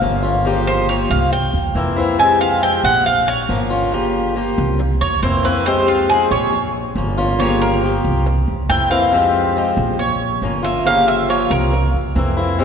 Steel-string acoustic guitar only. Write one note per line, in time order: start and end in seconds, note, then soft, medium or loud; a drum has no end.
0.01 0.22 F3 soft
0.01 0.23 A#3 medium
0.01 0.23 C#4 medium
0.01 0.21 F4 medium
0.23 0.45 A#3 medium
0.23 0.45 C#4 medium
0.23 0.44 F4 medium
0.45 0.88 C#3 medium
0.45 0.87 F3 medium
0.45 0.88 A#3 medium
0.45 0.89 F4 medium
0.45 0.89 G4 medium
0.89 1.31 F3 soft
0.89 1.31 A#3 medium
0.89 1.32 F4 medium
0.89 1.32 G4 medium
1.32 muted steel-string acoustic guitar stroke medium
1.75 1.96 E3 medium
1.75 1.97 A#3 soft
1.75 1.96 C4 medium
1.75 1.95 E4 medium
1.96 2.19 E3 medium
1.96 2.19 A#3 medium
1.96 2.18 C4 medium
1.96 2.18 E4 medium
2.18 2.61 C3 medium
2.18 2.60 F3 medium
2.18 2.61 G#3 medium
2.18 2.62 C4 medium
2.18 2.62 G4 medium
2.61 3.04 F3 medium
2.61 3.05 G#3 medium
2.61 3.05 C4 medium
2.61 3.06 G4 medium
3.06 muted steel-string acoustic guitar stroke medium
3.49 3.70 F3 medium
3.49 3.71 A#3 soft
3.49 3.70 C#4 medium
3.49 3.69 F4 medium
3.70 3.92 A#3 medium
3.70 3.92 C#4 medium
3.70 3.91 F4 medium
3.92 4.35 C#3 medium
3.92 4.34 F3 medium
3.92 4.35 A#3 medium
3.92 4.35 F4 medium
3.92 4.36 G4 medium
4.35 4.78 F3 medium
4.35 4.79 A#3 medium
4.35 4.79 F4 medium
4.35 4.79 G4 medium
4.79 muted steel-string acoustic guitar stroke medium
5.22 5.44 E3 medium
5.22 5.44 A#3 soft
5.22 5.43 C4 medium
5.22 5.43 E4 medium
5.44 5.66 E3 medium
5.44 5.66 A#3 medium
5.44 5.65 C4 medium
5.44 5.65 E4 medium
5.65 6.08 C3 medium
5.65 6.07 F3 medium
5.65 6.09 G#3 medium
5.65 6.09 C4 medium
5.65 6.09 G4 medium
6.09 6.52 F3 soft
6.09 6.52 G#3 medium
6.09 6.53 C4 medium
6.09 6.53 G4 medium
6.53 muted steel-string acoustic guitar stroke medium
6.96 7.17 F3 soft
6.96 7.17 A#3 soft
6.96 7.18 C#4 soft
6.96 7.16 F4 medium
7.18 7.39 A#3 medium
7.18 7.39 C#4 medium
7.18 7.39 F4 medium
7.39 7.82 C#3 medium
7.39 7.81 F3 medium
7.39 7.82 A#3 medium
7.39 7.83 F4 medium
7.39 7.83 G4 medium
7.82 8.25 F3 soft
7.82 8.26 A#3 medium
7.82 8.26 F4 soft
7.82 8.26 G4 medium
8.26 muted steel-string acoustic guitar stroke medium
8.69 8.90 E3 soft
8.69 8.90 A#3 soft
8.69 8.90 C4 soft
8.69 8.89 E4 medium
8.90 9.12 E3 medium
8.90 9.12 A#3 medium
8.90 9.12 C4 medium
8.90 9.12 E4 medium
9.12 9.55 C3 medium
9.12 9.55 F3 medium
9.12 9.56 G#3 medium
9.12 9.56 C4 medium
9.12 9.56 G4 medium
9.56 9.98 F3 soft
9.56 9.99 G#3 medium
9.56 9.99 C4 medium
9.56 10.00 G4 medium
9.99 muted steel-string acoustic guitar stroke medium
10.42 10.63 F3 soft
10.42 10.64 A#3 soft
10.42 10.63 C#4 medium
10.42 10.62 F4 medium
10.63 10.85 A#3 medium
10.63 10.85 C#4 medium
10.63 10.85 F4 medium
10.85 11.28 C#3 medium
10.85 11.27 F3 medium
10.85 11.28 A#3 medium
10.85 11.29 F4 medium
10.85 11.29 G4 medium
11.28 11.71 F3 medium
11.28 11.72 A#3 medium
11.28 11.72 F4 medium
11.28 11.73 G4 medium
11.72 muted steel-string acoustic guitar stroke medium
12.15 12.37 E3 soft
12.15 12.37 A#3 medium
12.15 12.36 C4 medium
12.15 12.36 E4 medium
12.37 12.59 E3 medium
12.37 12.59 A#3 medium
12.37 12.58 C4 medium
12.37 12.58 E4 medium
12.58 12.64 C3 medium
12.58 12.64 F3 medium
12.58 12.64 G#3 medium
12.58 12.64 C4 medium
12.58 12.64 G4 medium